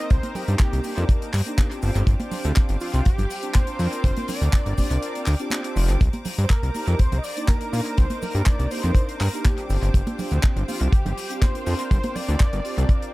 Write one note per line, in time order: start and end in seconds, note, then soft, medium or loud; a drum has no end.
0.00 0.81 A#3 medium
0.00 0.81 C4 medium
0.00 0.82 D#4 medium
0.00 0.82 A#4 medium
0.00 5.97 C5 medium
0.00 0.12 D#5 loud
0.00 1.79 A#5 medium
0.00 13.14 D6 medium
0.10 0.19 C2 medium
0.10 0.37 C5 loud
0.10 kick loud
0.10 closed hi-hat medium
0.10 cabasa soft
0.23 closed hi-hat medium
0.23 high conga medium
0.35 0.59 G4 loud
0.35 open hi-hat loud
0.35 low conga medium
0.35 cabasa medium
0.48 0.56 G2 medium
0.48 closed hi-hat medium
0.48 cabasa medium
0.59 1.06 G4 medium
0.59 kick loud
0.59 clap loud
0.59 closed hi-hat medium
0.59 cabasa soft
0.73 0.80 C2 medium
0.73 closed hi-hat medium
0.84 0.94 A#3 medium
0.84 0.94 D4 medium
0.84 0.94 D#4 medium
0.84 0.94 G4 loud
0.84 open hi-hat medium
0.84 cabasa medium
0.97 1.05 F2 medium
0.97 1.31 A#3 medium
0.97 1.31 D4 medium
0.97 1.31 D#4 medium
0.97 1.31 A#4 loud
0.97 closed hi-hat medium
0.97 cabasa medium
1.09 kick loud
1.09 closed hi-hat medium
1.09 cabasa soft
1.22 closed hi-hat medium
1.33 1.42 G2 medium
1.33 clap medium
1.33 open hi-hat loud
1.33 cabasa loud
1.46 1.68 A#3 medium
1.46 1.68 D4 medium
1.46 1.68 D#4 medium
1.46 1.68 G4 medium
1.46 closed hi-hat medium
1.46 cabasa soft
1.58 kick loud
1.58 clap loud
1.58 closed hi-hat medium
1.58 high conga medium
1.58 cabasa soft
1.70 2.78 C4 medium
1.70 2.78 D4 medium
1.70 2.78 F4 medium
1.70 2.79 G4 medium
1.70 closed hi-hat medium
1.82 1.91 G1 loud
1.82 5.97 F5 medium
1.82 5.97 G5 medium
1.82 open hi-hat loud
1.82 cabasa medium
1.95 2.03 G1 loud
1.95 closed hi-hat medium
1.95 cabasa medium
2.07 2.15 G1 loud
2.07 kick loud
2.07 closed hi-hat medium
2.07 cabasa soft
2.20 closed hi-hat medium
2.20 high conga medium
2.31 open hi-hat loud
2.31 low conga medium
2.31 cabasa loud
2.44 2.52 D2 loud
2.44 closed hi-hat medium
2.44 cabasa medium
2.55 kick loud
2.55 clap loud
2.55 closed hi-hat medium
2.55 cabasa soft
2.69 2.77 G1 medium
2.69 closed hi-hat medium
2.80 2.91 C4 medium
2.80 2.91 D4 medium
2.80 3.04 F4 medium
2.80 2.91 F4 medium
2.80 2.91 G4 medium
2.80 open hi-hat loud
2.80 cabasa medium
2.93 3.01 C2 loud
2.93 3.04 C4 medium
2.93 3.05 D4 medium
2.93 3.05 F4 medium
2.93 3.05 G4 medium
2.93 closed hi-hat medium
2.93 cabasa medium
3.05 3.16 G1 soft
3.05 3.56 G4 medium
3.05 kick loud
3.05 closed hi-hat medium
3.05 cabasa soft
3.18 3.26 G1 medium
3.18 closed hi-hat medium
3.18 low conga medium
3.30 open hi-hat loud
3.30 cabasa medium
3.42 3.64 C4 medium
3.42 3.64 D4 medium
3.42 3.65 F4 medium
3.42 3.65 G4 medium
3.42 closed hi-hat medium
3.42 cabasa medium
3.54 4.03 C5 loud
3.54 kick loud
3.54 clap loud
3.54 closed hi-hat medium
3.54 high conga medium
3.54 cabasa soft
3.66 4.74 C4 medium
3.66 4.75 D4 medium
3.66 4.75 F4 medium
3.66 4.75 A#4 medium
3.66 closed hi-hat medium
3.79 3.88 F2 medium
3.79 open hi-hat loud
3.79 cabasa medium
3.92 closed hi-hat medium
3.92 cabasa medium
4.04 4.12 G1 loud
4.04 4.27 C5 loud
4.04 kick loud
4.04 closed hi-hat medium
4.04 cabasa soft
4.17 closed hi-hat medium
4.17 high conga loud
4.28 5.72 D5 loud
4.28 open hi-hat loud
4.28 low conga medium
4.28 cabasa loud
4.41 4.49 D2 medium
4.41 closed hi-hat medium
4.41 cabasa medium
4.53 kick loud
4.53 clap loud
4.53 closed hi-hat medium
4.53 cabasa soft
4.66 4.74 G1 medium
4.66 closed hi-hat medium
4.77 4.87 C4 loud
4.77 4.87 D4 medium
4.77 4.88 F4 medium
4.77 4.88 G4 loud
4.77 kick medium
4.77 open hi-hat loud
4.77 high conga medium
4.77 cabasa loud
4.90 4.98 C2 medium
4.90 5.24 C4 medium
4.90 5.24 D4 medium
4.90 5.24 F4 medium
4.90 5.24 A#4 loud
4.90 closed hi-hat medium
4.90 cabasa medium
5.02 closed hi-hat medium
5.02 cabasa soft
5.15 closed hi-hat medium
5.26 5.35 D2 medium
5.26 clap medium
5.26 open hi-hat loud
5.26 cabasa loud
5.39 5.61 C4 medium
5.39 5.61 D4 medium
5.39 5.61 F4 medium
5.39 5.62 G4 medium
5.39 closed hi-hat medium
5.39 cabasa medium
5.50 clap loud
5.50 closed hi-hat medium
5.50 high conga medium
5.50 cabasa soft
5.64 5.99 C4 medium
5.64 5.99 D4 medium
5.64 6.00 F4 medium
5.64 6.00 G4 medium
5.64 closed hi-hat medium
5.76 5.91 F1 loud
5.76 open hi-hat loud
5.76 cabasa medium
5.89 5.96 G1 loud
5.89 closed hi-hat medium
5.89 cabasa medium
6.01 6.09 C2 loud
6.01 13.14 C5 medium
6.01 9.66 A#5 medium
6.01 kick loud
6.01 closed hi-hat medium
6.01 cabasa soft
6.13 closed hi-hat medium
6.13 high conga loud
6.25 open hi-hat loud
6.25 low conga medium
6.25 cabasa loud
6.38 6.46 G2 medium
6.38 closed hi-hat medium
6.38 cabasa medium
6.43 6.52 C5 medium
6.50 7.01 A#4 loud
6.50 kick loud
6.50 clap loud
6.50 closed hi-hat medium
6.50 cabasa soft
6.63 6.70 C2 medium
6.63 closed hi-hat medium
6.74 6.84 A#3 medium
6.74 6.84 D4 medium
6.74 6.85 D#4 medium
6.74 6.85 G4 medium
6.74 open hi-hat loud
6.74 high conga medium
6.74 cabasa medium
6.87 6.95 F2 medium
6.87 6.98 A#3 medium
6.87 6.98 D4 medium
6.87 6.98 D#4 medium
6.87 6.99 G4 medium
6.87 closed hi-hat medium
6.87 cabasa medium
6.99 7.10 C2 soft
6.99 7.20 C5 loud
6.99 kick loud
6.99 closed hi-hat medium
6.99 cabasa soft
7.12 7.19 C2 medium
7.12 closed hi-hat medium
7.12 low conga medium
7.18 7.25 D#5 medium
7.24 7.50 D5 loud
7.24 open hi-hat loud
7.24 cabasa medium
7.36 7.58 A#3 medium
7.36 7.58 D4 medium
7.36 7.58 D#4 medium
7.36 7.59 G4 medium
7.36 closed hi-hat medium
7.36 cabasa medium
7.48 7.99 A#4 loud
7.48 kick loud
7.48 clap loud
7.48 closed hi-hat medium
7.48 high conga medium
7.48 cabasa soft
7.60 8.68 A#3 medium
7.60 8.68 D4 medium
7.60 8.69 D#4 medium
7.60 8.69 A#4 medium
7.60 closed hi-hat medium
7.73 7.81 A#2 medium
7.73 open hi-hat loud
7.73 cabasa loud
7.86 closed hi-hat medium
7.86 cabasa soft
7.98 8.06 C2 loud
7.98 8.24 C5 loud
7.98 kick loud
7.98 closed hi-hat medium
7.98 cabasa soft
8.10 closed hi-hat medium
8.10 high conga medium
8.22 8.48 A#4 loud
8.22 open hi-hat loud
8.22 low conga medium
8.22 cabasa medium
8.35 8.42 G2 medium
8.35 closed hi-hat medium
8.35 cabasa medium
8.46 8.72 D5 loud
8.46 kick loud
8.46 clap loud
8.46 closed hi-hat medium
8.46 cabasa soft
8.59 8.67 C2 loud
8.59 closed hi-hat medium
8.71 8.81 A#3 loud
8.71 8.81 D4 medium
8.71 8.81 D#4 medium
8.71 8.81 G4 loud
8.71 9.22 C5 loud
8.71 open hi-hat loud
8.71 cabasa medium
8.83 8.91 F2 medium
8.83 9.18 A#3 medium
8.83 9.18 D4 medium
8.83 9.18 D#4 medium
8.83 9.18 A#4 loud
8.83 closed hi-hat medium
8.83 cabasa soft
8.95 kick loud
8.95 closed hi-hat medium
8.95 cabasa soft
9.09 closed hi-hat medium
9.20 9.29 G2 medium
9.20 9.46 A#4 loud
9.20 clap medium
9.20 open hi-hat loud
9.20 cabasa loud
9.33 9.55 A#3 medium
9.33 9.55 D4 medium
9.33 9.55 D#4 medium
9.33 9.55 G4 medium
9.33 closed hi-hat medium
9.33 cabasa medium
9.45 9.82 G4 medium
9.45 kick loud
9.45 clap loud
9.45 closed hi-hat medium
9.45 high conga loud
9.45 cabasa soft
9.57 10.65 C4 medium
9.57 10.65 D4 medium
9.57 10.65 F4 medium
9.57 10.66 G4 medium
9.57 closed hi-hat medium
9.69 9.78 G1 loud
9.69 13.14 F5 medium
9.69 13.14 G5 medium
9.69 open hi-hat loud
9.69 cabasa medium
9.82 9.90 G1 loud
9.82 closed hi-hat medium
9.82 cabasa soft
9.94 10.02 G1 loud
9.94 kick loud
9.94 closed hi-hat medium
9.94 cabasa soft
10.07 closed hi-hat medium
10.07 high conga loud
10.19 open hi-hat loud
10.19 low conga medium
10.19 cabasa medium
10.31 10.39 D2 medium
10.31 closed hi-hat medium
10.31 cabasa medium
10.43 kick loud
10.43 clap loud
10.43 closed hi-hat medium
10.43 cabasa soft
10.56 10.64 G1 medium
10.56 closed hi-hat medium
10.67 10.77 C4 medium
10.67 10.78 D4 medium
10.67 10.78 F4 medium
10.67 10.94 F4 medium
10.67 10.78 G4 medium
10.67 open hi-hat loud
10.67 high conga medium
10.67 cabasa medium
10.80 10.88 C2 medium
10.80 10.91 C4 medium
10.80 10.91 D4 medium
10.80 10.92 F4 medium
10.80 10.92 G4 medium
10.80 closed hi-hat medium
10.80 cabasa soft
10.93 11.03 G1 soft
10.93 11.43 G4 loud
10.93 kick loud
10.93 closed hi-hat medium
10.93 cabasa soft
11.05 11.13 G1 medium
11.05 closed hi-hat medium
11.05 low conga medium
11.18 open hi-hat loud
11.18 cabasa medium
11.29 11.51 C4 medium
11.29 11.51 D4 medium
11.29 11.52 F4 medium
11.29 11.52 G4 medium
11.29 closed hi-hat medium
11.29 cabasa medium
11.42 11.90 C5 loud
11.42 kick loud
11.42 clap loud
11.42 closed hi-hat medium
11.42 high conga loud
11.42 cabasa soft
11.53 12.61 C4 medium
11.53 12.62 D4 medium
11.53 12.62 F4 medium
11.53 12.62 A#4 medium
11.53 closed hi-hat medium
11.66 11.75 F2 medium
11.66 open hi-hat loud
11.66 cabasa medium
11.79 closed hi-hat medium
11.79 cabasa medium
11.91 11.99 G1 loud
11.91 12.17 C5 loud
11.91 kick loud
11.91 closed hi-hat medium
11.91 cabasa soft
12.03 closed hi-hat medium
12.03 high conga loud
12.15 13.14 D5 loud
12.15 open hi-hat loud
12.15 low conga medium
12.15 cabasa medium
12.29 12.36 D2 medium
12.29 closed hi-hat medium
12.29 cabasa medium
12.40 kick loud
12.40 clap loud
12.40 closed hi-hat medium
12.40 cabasa soft
12.53 12.60 G1 medium
12.53 closed hi-hat medium
12.64 12.74 C4 medium
12.64 12.74 D4 medium
12.64 12.75 F4 medium
12.64 12.75 G4 loud
12.64 open hi-hat loud
12.64 cabasa medium
12.77 12.85 C2 loud
12.77 13.11 C4 medium
12.77 13.11 D4 medium
12.77 13.11 F4 medium
12.77 13.11 A#4 loud
12.77 closed hi-hat medium
12.77 cabasa soft
12.89 kick loud
12.89 closed hi-hat medium
12.89 cabasa soft
13.02 closed hi-hat medium